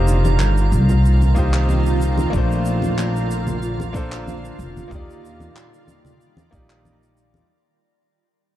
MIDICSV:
0, 0, Header, 1, 6, 480
1, 0, Start_track
1, 0, Tempo, 645161
1, 1734, Time_signature, 4, 2, 24, 8
1, 6369, End_track
2, 0, Start_track
2, 0, Title_t, "Synth texture"
2, 0, Program_c, 0, 99
2, 0, Note_on_c, 0, 82, 82
2, 5583, Note_off_c, 0, 82, 0
2, 6369, End_track
3, 0, Start_track
3, 0, Title_t, "Grand piano"
3, 0, Program_c, 1, 0
3, 0, Control_c, 1, 64, 127
3, 0, Note_on_c, 1, 58, 81
3, 0, Note_on_c, 1, 63, 71
3, 0, Note_on_c, 1, 65, 69
3, 0, Note_on_c, 1, 67, 70
3, 0, Note_on_c, 1, 72, 89
3, 975, Note_off_c, 1, 58, 0
3, 983, Note_off_c, 1, 63, 0
3, 990, Note_off_c, 1, 65, 0
3, 996, Note_off_c, 1, 67, 0
3, 1003, Note_off_c, 1, 72, 0
3, 1003, Note_on_c, 1, 58, 84
3, 1010, Note_on_c, 1, 63, 81
3, 1018, Note_on_c, 1, 65, 77
3, 1024, Note_on_c, 1, 67, 75
3, 1031, Note_on_c, 1, 72, 92
3, 1091, Note_off_c, 1, 58, 0
3, 1094, Note_off_c, 1, 63, 0
3, 1098, Note_off_c, 1, 65, 0
3, 1102, Note_off_c, 1, 67, 0
3, 1105, Note_off_c, 1, 72, 0
3, 1712, Note_on_c, 1, 58, 81
3, 1725, Note_on_c, 1, 62, 71
3, 1739, Note_on_c, 1, 65, 70
3, 1745, Control_c, 1, 64, 0
3, 1752, Note_on_c, 1, 57, 72
3, 1766, Note_on_c, 1, 72, 89
3, 1882, Control_c, 1, 64, 127
3, 2896, Note_off_c, 1, 58, 0
3, 2903, Note_off_c, 1, 62, 0
3, 2910, Note_off_c, 1, 65, 0
3, 2916, Note_off_c, 1, 57, 0
3, 2923, Note_off_c, 1, 72, 0
3, 2923, Note_on_c, 1, 58, 83
3, 2930, Note_on_c, 1, 62, 76
3, 2936, Note_on_c, 1, 65, 74
3, 2943, Note_on_c, 1, 69, 72
3, 2949, Note_on_c, 1, 72, 95
3, 3011, Note_off_c, 1, 58, 0
3, 3014, Note_off_c, 1, 62, 0
3, 3017, Note_off_c, 1, 65, 0
3, 3021, Note_off_c, 1, 69, 0
3, 3024, Note_off_c, 1, 72, 0
3, 3629, Note_on_c, 1, 58, 77
3, 3643, Note_on_c, 1, 63, 74
3, 3658, Note_on_c, 1, 65, 69
3, 3665, Control_c, 1, 64, 0
3, 3671, Note_on_c, 1, 67, 66
3, 3684, Note_on_c, 1, 74, 84
3, 3795, Control_c, 1, 64, 127
3, 4815, Note_off_c, 1, 58, 0
3, 4822, Note_off_c, 1, 63, 0
3, 4829, Note_off_c, 1, 65, 0
3, 4836, Note_off_c, 1, 67, 0
3, 4842, Note_off_c, 1, 74, 0
3, 4843, Note_on_c, 1, 58, 79
3, 4850, Note_on_c, 1, 63, 75
3, 4856, Note_on_c, 1, 65, 69
3, 4864, Note_on_c, 1, 67, 69
3, 4869, Note_on_c, 1, 74, 84
3, 4931, Note_off_c, 1, 58, 0
3, 4934, Note_off_c, 1, 63, 0
3, 4937, Note_off_c, 1, 65, 0
3, 4941, Note_off_c, 1, 67, 0
3, 4944, Note_off_c, 1, 74, 0
3, 5583, Control_c, 1, 64, 0
3, 6369, End_track
4, 0, Start_track
4, 0, Title_t, "Ambient pad"
4, 0, Program_c, 2, 92
4, 0, Note_on_c, 2, 46, 69
4, 0, Note_on_c, 2, 51, 78
4, 0, Note_on_c, 2, 60, 72
4, 0, Note_on_c, 2, 65, 88
4, 1715, Note_off_c, 2, 65, 0
4, 1716, Note_off_c, 2, 51, 0
4, 1716, Note_off_c, 2, 60, 0
4, 1735, Note_on_c, 2, 50, 74
4, 1737, Note_on_c, 2, 65, 84
4, 3625, Note_off_c, 2, 46, 0
4, 3635, Note_off_c, 2, 50, 0
4, 3654, Note_on_c, 2, 55, 70
4, 3654, Note_on_c, 2, 74, 70
4, 3655, Note_on_c, 2, 51, 78
4, 5546, Note_off_c, 2, 65, 0
4, 5555, Note_off_c, 2, 51, 0
4, 5555, Note_off_c, 2, 55, 0
4, 5555, Note_off_c, 2, 74, 0
4, 6369, End_track
5, 0, Start_track
5, 0, Title_t, "Upright bass"
5, 0, Program_c, 3, 32
5, 0, Note_on_c, 3, 29, 88
5, 296, Note_off_c, 3, 29, 0
5, 296, Note_on_c, 3, 31, 91
5, 537, Note_on_c, 3, 36, 85
5, 548, Note_off_c, 3, 31, 0
5, 1669, Note_off_c, 3, 36, 0
5, 1735, Note_on_c, 3, 34, 99
5, 3348, Note_off_c, 3, 34, 0
5, 3414, Note_on_c, 3, 29, 83
5, 3571, Note_off_c, 3, 29, 0
5, 3654, Note_on_c, 3, 39, 87
5, 4067, Note_off_c, 3, 39, 0
5, 4856, Note_on_c, 3, 34, 79
5, 5508, Note_off_c, 3, 34, 0
5, 6369, End_track
6, 0, Start_track
6, 0, Title_t, "Drums"
6, 58, Note_on_c, 9, 82, 93
6, 132, Note_off_c, 9, 82, 0
6, 185, Note_on_c, 9, 63, 87
6, 187, Note_on_c, 9, 82, 53
6, 259, Note_off_c, 9, 63, 0
6, 262, Note_off_c, 9, 82, 0
6, 294, Note_on_c, 9, 39, 67
6, 304, Note_on_c, 9, 82, 49
6, 369, Note_off_c, 9, 39, 0
6, 378, Note_off_c, 9, 82, 0
6, 427, Note_on_c, 9, 82, 50
6, 501, Note_off_c, 9, 82, 0
6, 539, Note_on_c, 9, 82, 84
6, 613, Note_off_c, 9, 82, 0
6, 663, Note_on_c, 9, 82, 46
6, 664, Note_on_c, 9, 64, 98
6, 737, Note_off_c, 9, 82, 0
6, 738, Note_off_c, 9, 64, 0
6, 784, Note_on_c, 9, 82, 51
6, 859, Note_off_c, 9, 82, 0
6, 907, Note_on_c, 9, 82, 43
6, 908, Note_on_c, 9, 63, 95
6, 981, Note_off_c, 9, 82, 0
6, 982, Note_off_c, 9, 63, 0
6, 1013, Note_on_c, 9, 82, 75
6, 1016, Note_on_c, 9, 36, 95
6, 1087, Note_off_c, 9, 82, 0
6, 1090, Note_off_c, 9, 36, 0
6, 1142, Note_on_c, 9, 82, 43
6, 1143, Note_on_c, 9, 39, 69
6, 1217, Note_off_c, 9, 82, 0
6, 1218, Note_off_c, 9, 39, 0
6, 1256, Note_on_c, 9, 63, 65
6, 1263, Note_on_c, 9, 82, 58
6, 1330, Note_off_c, 9, 63, 0
6, 1337, Note_off_c, 9, 82, 0
6, 1386, Note_on_c, 9, 82, 51
6, 1460, Note_off_c, 9, 82, 0
6, 1500, Note_on_c, 9, 82, 82
6, 1574, Note_off_c, 9, 82, 0
6, 1619, Note_on_c, 9, 63, 84
6, 1626, Note_on_c, 9, 82, 46
6, 1693, Note_off_c, 9, 63, 0
6, 1700, Note_off_c, 9, 82, 0
6, 1735, Note_on_c, 9, 36, 113
6, 1740, Note_on_c, 9, 82, 58
6, 1810, Note_off_c, 9, 36, 0
6, 1814, Note_off_c, 9, 82, 0
6, 1873, Note_on_c, 9, 82, 50
6, 1947, Note_off_c, 9, 82, 0
6, 1974, Note_on_c, 9, 82, 90
6, 2049, Note_off_c, 9, 82, 0
6, 2099, Note_on_c, 9, 63, 84
6, 2109, Note_on_c, 9, 82, 48
6, 2173, Note_off_c, 9, 63, 0
6, 2184, Note_off_c, 9, 82, 0
6, 2220, Note_on_c, 9, 39, 62
6, 2221, Note_on_c, 9, 82, 60
6, 2294, Note_off_c, 9, 39, 0
6, 2296, Note_off_c, 9, 82, 0
6, 2352, Note_on_c, 9, 82, 46
6, 2426, Note_off_c, 9, 82, 0
6, 2463, Note_on_c, 9, 82, 87
6, 2538, Note_off_c, 9, 82, 0
6, 2580, Note_on_c, 9, 64, 89
6, 2585, Note_on_c, 9, 82, 52
6, 2654, Note_off_c, 9, 64, 0
6, 2660, Note_off_c, 9, 82, 0
6, 2696, Note_on_c, 9, 82, 57
6, 2771, Note_off_c, 9, 82, 0
6, 2826, Note_on_c, 9, 63, 88
6, 2836, Note_on_c, 9, 82, 48
6, 2900, Note_off_c, 9, 63, 0
6, 2910, Note_off_c, 9, 82, 0
6, 2934, Note_on_c, 9, 36, 89
6, 2940, Note_on_c, 9, 82, 81
6, 3009, Note_off_c, 9, 36, 0
6, 3015, Note_off_c, 9, 82, 0
6, 3065, Note_on_c, 9, 39, 68
6, 3078, Note_on_c, 9, 82, 45
6, 3140, Note_off_c, 9, 39, 0
6, 3152, Note_off_c, 9, 82, 0
6, 3180, Note_on_c, 9, 63, 67
6, 3185, Note_on_c, 9, 82, 53
6, 3254, Note_off_c, 9, 63, 0
6, 3259, Note_off_c, 9, 82, 0
6, 3309, Note_on_c, 9, 82, 48
6, 3384, Note_off_c, 9, 82, 0
6, 3420, Note_on_c, 9, 82, 87
6, 3494, Note_off_c, 9, 82, 0
6, 3549, Note_on_c, 9, 82, 46
6, 3551, Note_on_c, 9, 63, 82
6, 3624, Note_off_c, 9, 82, 0
6, 3625, Note_off_c, 9, 63, 0
6, 3654, Note_on_c, 9, 36, 108
6, 3660, Note_on_c, 9, 82, 53
6, 3728, Note_off_c, 9, 36, 0
6, 3735, Note_off_c, 9, 82, 0
6, 3798, Note_on_c, 9, 82, 43
6, 3872, Note_off_c, 9, 82, 0
6, 3909, Note_on_c, 9, 82, 75
6, 3984, Note_off_c, 9, 82, 0
6, 4019, Note_on_c, 9, 63, 78
6, 4028, Note_on_c, 9, 82, 43
6, 4094, Note_off_c, 9, 63, 0
6, 4102, Note_off_c, 9, 82, 0
6, 4138, Note_on_c, 9, 82, 50
6, 4139, Note_on_c, 9, 39, 65
6, 4212, Note_off_c, 9, 82, 0
6, 4213, Note_off_c, 9, 39, 0
6, 4269, Note_on_c, 9, 82, 47
6, 4343, Note_off_c, 9, 82, 0
6, 4373, Note_on_c, 9, 63, 61
6, 4377, Note_on_c, 9, 82, 76
6, 4448, Note_off_c, 9, 63, 0
6, 4452, Note_off_c, 9, 82, 0
6, 4499, Note_on_c, 9, 64, 86
6, 4507, Note_on_c, 9, 82, 48
6, 4574, Note_off_c, 9, 64, 0
6, 4582, Note_off_c, 9, 82, 0
6, 4622, Note_on_c, 9, 82, 50
6, 4696, Note_off_c, 9, 82, 0
6, 4738, Note_on_c, 9, 63, 95
6, 4748, Note_on_c, 9, 82, 41
6, 4812, Note_off_c, 9, 63, 0
6, 4822, Note_off_c, 9, 82, 0
6, 4855, Note_on_c, 9, 36, 85
6, 4859, Note_on_c, 9, 82, 74
6, 4930, Note_off_c, 9, 36, 0
6, 4934, Note_off_c, 9, 82, 0
6, 4985, Note_on_c, 9, 39, 58
6, 4985, Note_on_c, 9, 82, 41
6, 5059, Note_off_c, 9, 39, 0
6, 5060, Note_off_c, 9, 82, 0
6, 5098, Note_on_c, 9, 63, 69
6, 5103, Note_on_c, 9, 82, 50
6, 5173, Note_off_c, 9, 63, 0
6, 5177, Note_off_c, 9, 82, 0
6, 5232, Note_on_c, 9, 82, 46
6, 5306, Note_off_c, 9, 82, 0
6, 5337, Note_on_c, 9, 82, 72
6, 5411, Note_off_c, 9, 82, 0
6, 5461, Note_on_c, 9, 63, 82
6, 5477, Note_on_c, 9, 82, 40
6, 5535, Note_off_c, 9, 63, 0
6, 5551, Note_off_c, 9, 82, 0
6, 6369, End_track
0, 0, End_of_file